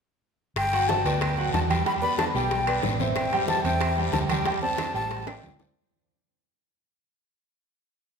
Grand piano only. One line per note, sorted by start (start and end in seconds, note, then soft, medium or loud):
0.73 1.00 F#3 medium
0.73 1.00 F#4 medium
0.73 1.00 F#5 medium
1.06 1.32 B3 medium
1.06 1.33 B4 medium
1.06 1.33 D5 medium
1.38 1.64 F#3 medium
1.38 1.65 F#4 medium
1.38 1.65 F#5 medium
1.70 1.83 G3 medium
1.70 1.84 G4 medium
1.70 1.84 G5 medium
1.86 2.00 G3 medium
1.86 2.00 G4 medium
1.86 2.00 G5 medium
2.02 2.29 B3 medium
2.02 2.29 B4 medium
2.02 2.29 D5 medium
2.35 2.62 G3 medium
2.35 2.62 G4 medium
2.35 2.62 G5 medium
2.67 2.94 B3 medium
2.67 2.95 B4 medium
2.67 2.95 D5 medium
3.00 3.27 C4 medium
3.00 3.27 C5 medium
3.00 3.27 E5 medium
3.33 3.59 G3 medium
3.33 3.60 G4 medium
3.33 3.60 G5 medium
3.65 3.92 C4 medium
3.65 3.92 C5 medium
3.65 3.92 E5 medium
3.98 4.25 G3 medium
3.98 4.25 G4 medium
3.98 4.25 G5 medium
4.30 4.44 G3 medium
4.30 4.44 G4 medium
4.30 4.44 G5 medium
4.46 4.60 G3 medium
4.46 4.60 G4 medium
4.46 4.60 G5 medium
4.63 4.89 C4 medium
4.63 4.89 C5 medium
4.63 4.89 D5 medium
4.94 5.21 G3 medium
4.94 5.21 G4 medium
4.94 5.22 G5 medium
5.27 5.54 C4 medium
5.27 5.54 C5 medium
5.27 5.55 D5 medium
5.61 5.74 C4 medium
5.61 5.74 C5 medium
5.61 5.74 D5 medium